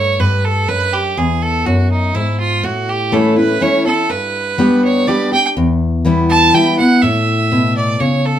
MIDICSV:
0, 0, Header, 1, 3, 480
1, 0, Start_track
1, 0, Tempo, 488122
1, 1152, Time_signature, 3, 2, 24, 8
1, 8253, End_track
2, 0, Start_track
2, 0, Title_t, "Fiddle"
2, 0, Program_c, 0, 110
2, 0, Note_on_c, 0, 73, 95
2, 193, Note_on_c, 0, 71, 82
2, 208, Note_off_c, 0, 73, 0
2, 439, Note_on_c, 0, 69, 92
2, 454, Note_off_c, 0, 71, 0
2, 676, Note_on_c, 0, 71, 106
2, 691, Note_off_c, 0, 69, 0
2, 917, Note_on_c, 0, 67, 93
2, 932, Note_off_c, 0, 71, 0
2, 1156, Note_on_c, 0, 68, 82
2, 1170, Note_off_c, 0, 67, 0
2, 1399, Note_on_c, 0, 69, 94
2, 1414, Note_off_c, 0, 68, 0
2, 1631, Note_on_c, 0, 66, 83
2, 1646, Note_off_c, 0, 69, 0
2, 1872, Note_off_c, 0, 66, 0
2, 1878, Note_on_c, 0, 63, 79
2, 2114, Note_on_c, 0, 64, 83
2, 2129, Note_off_c, 0, 63, 0
2, 2352, Note_off_c, 0, 64, 0
2, 2358, Note_on_c, 0, 65, 96
2, 2600, Note_on_c, 0, 66, 87
2, 2615, Note_off_c, 0, 65, 0
2, 2844, Note_on_c, 0, 67, 94
2, 2859, Note_off_c, 0, 66, 0
2, 3077, Note_on_c, 0, 69, 84
2, 3092, Note_off_c, 0, 67, 0
2, 3311, Note_off_c, 0, 69, 0
2, 3317, Note_on_c, 0, 71, 89
2, 3558, Note_on_c, 0, 73, 102
2, 3573, Note_off_c, 0, 71, 0
2, 3792, Note_off_c, 0, 73, 0
2, 3798, Note_on_c, 0, 69, 96
2, 4034, Note_on_c, 0, 71, 92
2, 4049, Note_off_c, 0, 69, 0
2, 4754, Note_off_c, 0, 71, 0
2, 4760, Note_on_c, 0, 73, 93
2, 4988, Note_on_c, 0, 74, 96
2, 5003, Note_off_c, 0, 73, 0
2, 5229, Note_off_c, 0, 74, 0
2, 5235, Note_on_c, 0, 79, 114
2, 5377, Note_off_c, 0, 79, 0
2, 6192, Note_on_c, 0, 81, 108
2, 6431, Note_on_c, 0, 79, 96
2, 6446, Note_off_c, 0, 81, 0
2, 6667, Note_off_c, 0, 79, 0
2, 6673, Note_on_c, 0, 78, 113
2, 6907, Note_on_c, 0, 76, 92
2, 6922, Note_off_c, 0, 78, 0
2, 7631, Note_off_c, 0, 76, 0
2, 7637, Note_on_c, 0, 74, 93
2, 7868, Note_on_c, 0, 73, 92
2, 7883, Note_off_c, 0, 74, 0
2, 8118, Note_on_c, 0, 69, 96
2, 8132, Note_off_c, 0, 73, 0
2, 8253, Note_off_c, 0, 69, 0
2, 8253, End_track
3, 0, Start_track
3, 0, Title_t, "Steel-string acoustic guitar"
3, 0, Program_c, 1, 25
3, 0, Note_on_c, 1, 43, 93
3, 182, Note_off_c, 1, 43, 0
3, 194, Note_on_c, 1, 43, 94
3, 649, Note_off_c, 1, 43, 0
3, 674, Note_on_c, 1, 42, 90
3, 1129, Note_off_c, 1, 42, 0
3, 1154, Note_on_c, 1, 40, 88
3, 1631, Note_off_c, 1, 40, 0
3, 1635, Note_on_c, 1, 42, 93
3, 2090, Note_off_c, 1, 42, 0
3, 2111, Note_on_c, 1, 44, 95
3, 2568, Note_off_c, 1, 44, 0
3, 2590, Note_on_c, 1, 45, 91
3, 3066, Note_on_c, 1, 52, 84
3, 3071, Note_on_c, 1, 57, 93
3, 3080, Note_on_c, 1, 61, 87
3, 3084, Note_on_c, 1, 64, 98
3, 3297, Note_off_c, 1, 64, 0
3, 3303, Note_off_c, 1, 52, 0
3, 3305, Note_off_c, 1, 57, 0
3, 3308, Note_on_c, 1, 64, 60
3, 3310, Note_off_c, 1, 61, 0
3, 3327, Note_on_c, 1, 61, 50
3, 3504, Note_off_c, 1, 45, 0
3, 3538, Note_off_c, 1, 64, 0
3, 3543, Note_on_c, 1, 52, 88
3, 3548, Note_off_c, 1, 61, 0
3, 3552, Note_on_c, 1, 57, 84
3, 3558, Note_on_c, 1, 61, 100
3, 3562, Note_on_c, 1, 64, 103
3, 3775, Note_off_c, 1, 64, 0
3, 3782, Note_off_c, 1, 52, 0
3, 3786, Note_off_c, 1, 57, 0
3, 3786, Note_on_c, 1, 64, 58
3, 3789, Note_off_c, 1, 61, 0
3, 3806, Note_on_c, 1, 61, 52
3, 4017, Note_off_c, 1, 64, 0
3, 4027, Note_off_c, 1, 61, 0
3, 4028, Note_on_c, 1, 43, 83
3, 4503, Note_on_c, 1, 55, 93
3, 4511, Note_on_c, 1, 59, 92
3, 4517, Note_on_c, 1, 62, 97
3, 4521, Note_on_c, 1, 67, 94
3, 4942, Note_off_c, 1, 43, 0
3, 4964, Note_off_c, 1, 55, 0
3, 4968, Note_off_c, 1, 59, 0
3, 4970, Note_off_c, 1, 62, 0
3, 4972, Note_off_c, 1, 67, 0
3, 4985, Note_on_c, 1, 55, 81
3, 4994, Note_on_c, 1, 59, 91
3, 4999, Note_on_c, 1, 62, 89
3, 5005, Note_on_c, 1, 67, 94
3, 5218, Note_off_c, 1, 67, 0
3, 5223, Note_off_c, 1, 55, 0
3, 5227, Note_off_c, 1, 59, 0
3, 5230, Note_off_c, 1, 62, 0
3, 5230, Note_on_c, 1, 67, 60
3, 5250, Note_on_c, 1, 62, 50
3, 5459, Note_off_c, 1, 67, 0
3, 5469, Note_off_c, 1, 62, 0
3, 5474, Note_on_c, 1, 40, 90
3, 5946, Note_on_c, 1, 52, 93
3, 5954, Note_on_c, 1, 55, 98
3, 5958, Note_on_c, 1, 59, 97
3, 5966, Note_on_c, 1, 64, 105
3, 6386, Note_off_c, 1, 40, 0
3, 6405, Note_off_c, 1, 52, 0
3, 6409, Note_off_c, 1, 55, 0
3, 6411, Note_off_c, 1, 59, 0
3, 6415, Note_off_c, 1, 64, 0
3, 6423, Note_on_c, 1, 52, 80
3, 6430, Note_on_c, 1, 55, 88
3, 6436, Note_on_c, 1, 59, 100
3, 6443, Note_on_c, 1, 64, 106
3, 6657, Note_off_c, 1, 64, 0
3, 6662, Note_off_c, 1, 52, 0
3, 6665, Note_off_c, 1, 55, 0
3, 6668, Note_off_c, 1, 59, 0
3, 6669, Note_on_c, 1, 64, 65
3, 6688, Note_on_c, 1, 59, 50
3, 6898, Note_off_c, 1, 64, 0
3, 6908, Note_off_c, 1, 59, 0
3, 6911, Note_on_c, 1, 45, 97
3, 7393, Note_on_c, 1, 47, 89
3, 7824, Note_off_c, 1, 45, 0
3, 7848, Note_off_c, 1, 47, 0
3, 7870, Note_on_c, 1, 49, 87
3, 8253, Note_off_c, 1, 49, 0
3, 8253, End_track
0, 0, End_of_file